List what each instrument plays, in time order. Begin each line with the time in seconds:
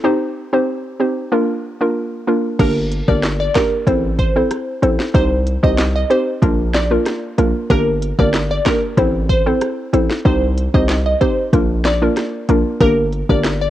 0.04 synth pluck C4 D#4 G4 C5
0.53 synth pluck C4 D#4 G4 C5
1.00 synth pluck C4 D#4 G4 C5
1.32 synth pluck A#3 D4 F4 A#4
1.81 synth pluck A#3 D4 F4 A#4
2.27 synth pluck A#3 D4 F4 A#4
2.59 808-style bass G1, synth pluck A#3 D4 G4 A#4, kick, closed hi-hat, crash
2.92 closed hi-hat
3.08 808-style bass G1, synth pluck A#3 D4 G4 A#4 D5, kick
3.23 snare, clap, closed hi-hat
3.40 synth pluck D5
3.55 synth pluck A#3 D4 G4 A#4, kick, snare, clap, closed hi-hat
3.87 808-style bass A1, synth pluck C4 E4 A4 C5, kick, closed hi-hat
4.19 synth pluck C5, kick, closed hi-hat
4.36 synth pluck C4 E4 A4 C5
4.51 cross-stick, closed hi-hat
4.82 808-style bass A1, synth pluck C4 E4 A4 C5, closed hi-hat
5.00 snare
5.14 808-style bass C2, synth pluck C4 D#4 G4 C5, kick, closed hi-hat
5.47 closed hi-hat
5.63 808-style bass C2, synth pluck C4 D#4 G4 C5 D#5, kick
5.78 snare, clap, closed hi-hat
5.96 synth pluck D#5
6.10 synth pluck C4 D#4 G4 C5, closed hi-hat
6.42 808-style bass A#1, synth pluck A#3 D4 F4 A#4, kick, closed hi-hat
6.74 synth pluck D5, snare, clap, closed hi-hat
6.91 synth pluck A#3 D4 F4 A#4
7.06 cross-stick, snare, closed hi-hat
7.38 808-style bass A#1, synth pluck A#3 D4 F4 A#4, closed hi-hat
7.70 808-style bass G1, synth pluck A#3 D4 G4 A#4, kick, closed hi-hat
8.02 closed hi-hat
8.19 808-style bass G1, synth pluck A#3 D4 G4 A#4 D5, kick
8.34 snare, clap, closed hi-hat
8.51 synth pluck D5
8.65 synth pluck A#3 D4 G4 A#4, kick, snare, clap, closed hi-hat
8.97 808-style bass A1, synth pluck C4 E4 A4 C5, kick, closed hi-hat
9.29 synth pluck C5, kick, closed hi-hat
9.46 synth pluck C4 E4 A4 C5
9.61 cross-stick, closed hi-hat
9.93 808-style bass A1, synth pluck C4 E4 A4 C5, closed hi-hat
10.10 snare
10.25 808-style bass C2, synth pluck C4 D#4 G4 C5, kick, closed hi-hat
10.58 closed hi-hat
10.74 808-style bass C2, synth pluck C4 D#4 G4 C5 D#5, kick
10.89 snare, clap, closed hi-hat
11.06 synth pluck D#5
11.21 synth pluck C4 D#4 G4 C5, kick, closed hi-hat
11.53 808-style bass A#1, synth pluck A#3 D4 F4 A#4, kick, closed hi-hat
11.85 synth pluck D5, snare, clap, closed hi-hat
12.02 synth pluck A#3 D4 F4 A#4
12.17 cross-stick, snare, closed hi-hat
12.49 808-style bass A#1, synth pluck A#3 D4 F4 A#4, closed hi-hat
12.80 808-style bass G1, synth pluck A#3 D4 G4 A#4, kick, closed hi-hat
13.13 closed hi-hat
13.29 808-style bass G1, synth pluck A#3 D4 G4 A#4 D5, kick
13.44 snare, clap, closed hi-hat
13.61 synth pluck D5